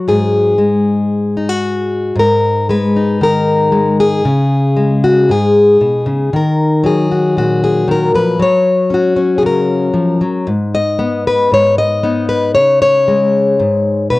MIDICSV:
0, 0, Header, 1, 2, 480
1, 0, Start_track
1, 0, Key_signature, 5, "minor"
1, 0, Tempo, 520833
1, 66, Time_signature, 4, 2, 24, 8
1, 13081, End_track
2, 0, Start_track
2, 0, Title_t, "Steel-string acoustic guitar"
2, 0, Program_c, 0, 25
2, 0, Note_on_c, 0, 54, 73
2, 71, Note_on_c, 0, 44, 68
2, 79, Note_on_c, 0, 68, 73
2, 533, Note_off_c, 0, 54, 0
2, 536, Note_on_c, 0, 56, 59
2, 1263, Note_on_c, 0, 63, 45
2, 1374, Note_off_c, 0, 63, 0
2, 1374, Note_on_c, 0, 66, 36
2, 1964, Note_off_c, 0, 56, 0
2, 1975, Note_off_c, 0, 44, 0
2, 1986, Note_on_c, 0, 44, 71
2, 1989, Note_off_c, 0, 66, 0
2, 2002, Note_off_c, 0, 68, 0
2, 2022, Note_on_c, 0, 70, 88
2, 2481, Note_on_c, 0, 56, 63
2, 2489, Note_off_c, 0, 70, 0
2, 2493, Note_on_c, 0, 71, 92
2, 2731, Note_on_c, 0, 63, 43
2, 2959, Note_on_c, 0, 51, 59
2, 2970, Note_off_c, 0, 71, 0
2, 2979, Note_on_c, 0, 70, 89
2, 3417, Note_off_c, 0, 56, 0
2, 3429, Note_on_c, 0, 56, 58
2, 3683, Note_off_c, 0, 70, 0
2, 3687, Note_on_c, 0, 68, 92
2, 3886, Note_off_c, 0, 56, 0
2, 3891, Note_off_c, 0, 51, 0
2, 3916, Note_off_c, 0, 44, 0
2, 3918, Note_on_c, 0, 49, 75
2, 3926, Note_off_c, 0, 63, 0
2, 4392, Note_on_c, 0, 56, 60
2, 4644, Note_on_c, 0, 66, 80
2, 4876, Note_on_c, 0, 44, 62
2, 4877, Note_off_c, 0, 49, 0
2, 4881, Note_off_c, 0, 66, 0
2, 4881, Note_off_c, 0, 68, 0
2, 4895, Note_on_c, 0, 68, 75
2, 5347, Note_off_c, 0, 44, 0
2, 5351, Note_on_c, 0, 47, 58
2, 5584, Note_on_c, 0, 49, 57
2, 5591, Note_off_c, 0, 47, 0
2, 5799, Note_off_c, 0, 56, 0
2, 5827, Note_off_c, 0, 49, 0
2, 5834, Note_on_c, 0, 51, 76
2, 5840, Note_off_c, 0, 68, 0
2, 5861, Note_on_c, 0, 70, 77
2, 6300, Note_on_c, 0, 54, 61
2, 6319, Note_off_c, 0, 70, 0
2, 6323, Note_on_c, 0, 68, 71
2, 6556, Note_on_c, 0, 66, 44
2, 6790, Note_on_c, 0, 46, 60
2, 6799, Note_off_c, 0, 66, 0
2, 6803, Note_on_c, 0, 66, 78
2, 7027, Note_off_c, 0, 68, 0
2, 7038, Note_on_c, 0, 68, 84
2, 7249, Note_off_c, 0, 51, 0
2, 7260, Note_on_c, 0, 51, 64
2, 7269, Note_off_c, 0, 68, 0
2, 7292, Note_on_c, 0, 70, 84
2, 7500, Note_off_c, 0, 51, 0
2, 7506, Note_on_c, 0, 53, 55
2, 7510, Note_off_c, 0, 66, 0
2, 7512, Note_off_c, 0, 70, 0
2, 7515, Note_on_c, 0, 71, 88
2, 7714, Note_off_c, 0, 46, 0
2, 7726, Note_off_c, 0, 54, 0
2, 7737, Note_on_c, 0, 54, 71
2, 7743, Note_off_c, 0, 53, 0
2, 7748, Note_off_c, 0, 71, 0
2, 7763, Note_on_c, 0, 73, 95
2, 8204, Note_on_c, 0, 61, 60
2, 8239, Note_on_c, 0, 66, 74
2, 8434, Note_off_c, 0, 61, 0
2, 8445, Note_on_c, 0, 61, 44
2, 8641, Note_off_c, 0, 73, 0
2, 8645, Note_on_c, 0, 68, 62
2, 8686, Note_on_c, 0, 49, 64
2, 8704, Note_off_c, 0, 68, 0
2, 8720, Note_on_c, 0, 70, 78
2, 9126, Note_off_c, 0, 66, 0
2, 9154, Note_off_c, 0, 49, 0
2, 9158, Note_on_c, 0, 53, 56
2, 9398, Note_off_c, 0, 54, 0
2, 9409, Note_on_c, 0, 54, 59
2, 9411, Note_off_c, 0, 53, 0
2, 9629, Note_off_c, 0, 61, 0
2, 9648, Note_on_c, 0, 44, 71
2, 9658, Note_off_c, 0, 54, 0
2, 9675, Note_off_c, 0, 70, 0
2, 9905, Note_on_c, 0, 75, 97
2, 10128, Note_on_c, 0, 59, 63
2, 10386, Note_off_c, 0, 75, 0
2, 10389, Note_on_c, 0, 71, 93
2, 10603, Note_off_c, 0, 44, 0
2, 10614, Note_on_c, 0, 44, 64
2, 10629, Note_off_c, 0, 71, 0
2, 10632, Note_on_c, 0, 73, 99
2, 10855, Note_off_c, 0, 73, 0
2, 10859, Note_on_c, 0, 75, 104
2, 11080, Note_off_c, 0, 59, 0
2, 11090, Note_on_c, 0, 59, 66
2, 11096, Note_on_c, 0, 63, 50
2, 11322, Note_off_c, 0, 75, 0
2, 11325, Note_on_c, 0, 71, 88
2, 11550, Note_off_c, 0, 59, 0
2, 11552, Note_off_c, 0, 63, 0
2, 11559, Note_off_c, 0, 71, 0
2, 11563, Note_on_c, 0, 73, 98
2, 11574, Note_on_c, 0, 49, 71
2, 11580, Note_off_c, 0, 44, 0
2, 11802, Note_off_c, 0, 73, 0
2, 11813, Note_on_c, 0, 73, 105
2, 12053, Note_on_c, 0, 56, 63
2, 12529, Note_on_c, 0, 44, 63
2, 12539, Note_off_c, 0, 49, 0
2, 12993, Note_off_c, 0, 73, 0
2, 12997, Note_on_c, 0, 71, 86
2, 13006, Note_off_c, 0, 44, 0
2, 13010, Note_on_c, 0, 47, 63
2, 13081, Note_off_c, 0, 47, 0
2, 13081, Note_off_c, 0, 56, 0
2, 13081, Note_off_c, 0, 71, 0
2, 13081, End_track
0, 0, End_of_file